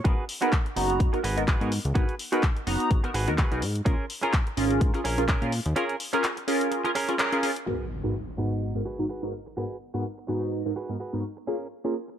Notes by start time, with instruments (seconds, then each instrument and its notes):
0.04 analog synth bass G#1, analog polysynth B3 D#4 F#4 A#4, clean electric guitar F#4 G#4 B4, kick, closed hi-hat
0.29 open hi-hat
0.41 analog polysynth B3 D#4 F#4 A#4, clean electric guitar F#4 G#4 B4, closed hi-hat
0.53 kick, clap, closed hi-hat
0.65 muted clean electric guitar stroke, closed hi-hat
0.76 analog synth bass F#1, analog polysynth B3 D#4 F#4 A#5, open hi-hat
0.90 closed hi-hat
1.00 analog synth bass F#2, muted clean electric guitar stroke, kick, closed hi-hat
1.13 analog polysynth B3 D#4 F#4 A#4, muted clean electric guitar stroke, closed hi-hat
1.24 analog synth bass G#1, clean electric guitar F#4 G#4 B4, open hi-hat
1.37 analog polysynth B3 D#4 F#4 A#4, closed hi-hat
1.48 clean electric guitar F#4 G#4 B4, kick, clap, closed hi-hat
1.61 analog synth bass G#2, analog polysynth B3 D#4 F#4 A#4, closed hi-hat
1.72 open hi-hat
1.85 analog synth bass C#2, closed hi-hat
1.95 analog polysynth B3 D#4 F#4 A#4, clean electric guitar F#4 G#4 B4, kick, closed hi-hat
2.09 closed hi-hat
2.19 open hi-hat
2.32 analog polysynth B3 D#4 F#4 A#4, clean electric guitar F#4 G#4 B4, closed hi-hat
2.43 kick, clap, closed hi-hat
2.56 muted clean electric guitar stroke, closed hi-hat
2.67 analog synth bass F#1, analog polysynth B3 D#4 F#4 A#5, open hi-hat
2.80 closed hi-hat
2.90 analog synth bass G#1, muted clean electric guitar stroke, kick, closed hi-hat
3.04 analog polysynth B3 D#4 F#4 A#4, muted clean electric guitar stroke, closed hi-hat
3.14 analog synth bass G#1, clean electric guitar F#4 G#4 B4, open hi-hat
3.28 analog synth bass D#2, analog polysynth B3 D#4 F#4 A#4, closed hi-hat
3.38 clean electric guitar F#4 G#4 B4, kick, clap, closed hi-hat
3.51 analog synth bass B1, analog polysynth B3 D#4 F#4 A#4, closed hi-hat
3.62 analog synth bass G#2, open hi-hat
3.75 closed hi-hat
3.85 analog synth bass A#1, clean electric guitar C#4 G#4 A#4, analog polysynth C#4 F4 G#4 A#4, kick, closed hi-hat
4.10 open hi-hat
4.23 clean electric guitar C#4 G#4 A#4, analog polysynth C#4 F4 G#4 A#4, closed hi-hat
4.33 kick, clap, closed hi-hat
4.46 muted clean electric guitar stroke, closed hi-hat
4.57 analog synth bass G#1, analog polysynth C#4 F4 G#4 A#4, open hi-hat
4.71 closed hi-hat
4.81 analog synth bass G#2, muted clean electric guitar stroke, kick, closed hi-hat
4.94 analog polysynth C#4 F4 G#4 A#4, muted clean electric guitar stroke, closed hi-hat
5.04 analog synth bass A#1, clean electric guitar C#4 G#4 A#4, open hi-hat
5.18 analog polysynth C#4 F4 G#4 A#4, closed hi-hat
5.28 clean electric guitar C#4 G#4 A#4, kick, clap, closed hi-hat
5.42 analog synth bass A#2, analog polysynth C#4 F4 G#4 A#4, closed hi-hat
5.52 open hi-hat
5.66 analog synth bass D#2, closed hi-hat
5.76 clean electric guitar C#4 G#4 A#4, analog polysynth C#4 F4 G#4 A#4, closed hi-hat
5.89 closed hi-hat
6.00 open hi-hat
6.13 analog polysynth C#4 F4 G#4 A#4, clean electric guitar C#4 G#4 A#4, closed hi-hat
6.24 clap, closed hi-hat
6.37 muted clean electric guitar stroke, closed hi-hat
6.47 analog polysynth C#4 F4 G#4 A#4, open hi-hat
6.61 closed hi-hat
6.71 muted clean electric guitar stroke, closed hi-hat
6.84 analog polysynth C#4 F4 G#4 A#4, muted clean electric guitar stroke, closed hi-hat
6.95 clean electric guitar C#4 G#4 A#4, open hi-hat
7.08 analog polysynth C#4 F4 G#4 A#4, closed hi-hat
7.19 clean electric guitar C#4 G#4 A#4, clap, closed hi-hat
7.32 analog polysynth C#4 F4 G#4 A#4, closed hi-hat
7.43 analog polysynth C#4 F4 G#4 A#4, open hi-hat
7.56 closed hi-hat
7.66 analog polysynth G#2 B3 D#4 F#4 A#4, clean electric guitar F#4 G#4 B4, impact
8.04 analog polysynth G#2 B3 D#4 F#4 A#4, clean electric guitar F#4 G#4 B4
8.27 muted clean electric guitar stroke
8.38 analog polysynth G#2 B3 D#4 F#4 A#5, clean electric guitar F#4 G#4 B4
8.62 muted clean electric guitar stroke
8.75 analog polysynth G#2 B3 D#4 F#4 A#4
8.85 clean electric guitar F#4 G#4 B4
8.99 analog polysynth G#2 B3 D#4 F#4 A#4
9.09 clean electric guitar F#4 G#4 B4
9.23 analog polysynth G#2 B3 D#4 F#4 A#4
9.33 muted clean electric guitar stroke
9.46 muted clean electric guitar stroke
9.57 analog polysynth G#2 B3 D#4 F#4 A#4, clean electric guitar F#4 G#4 B4
9.94 analog polysynth G#2 B3 D#4 F#4 A#4, clean electric guitar F#4 G#4 B4
10.18 muted clean electric guitar stroke
10.28 analog polysynth G#2 B3 D#4 F#4 A#5, clean electric guitar F#4 G#4 B4
10.52 muted clean electric guitar stroke
10.65 analog polysynth G#2 B3 D#4 F#4 A#4
10.76 clean electric guitar F#4 G#4 B4
10.89 analog polysynth G#2 B3 D#4 F#4 A#4
11.00 clean electric guitar F#4 G#4 B4
11.13 analog polysynth G#2 B3 D#4 F#4 A#4
11.24 muted clean electric guitar stroke
11.37 muted clean electric guitar stroke
11.47 analog polysynth A#3 C#4 F4 G#4, clean electric guitar C#4 G#4 A#4
11.84 analog polysynth A#3 C#4 F4 G#4, clean electric guitar C#4 G#4 A#4
12.08 muted clean electric guitar stroke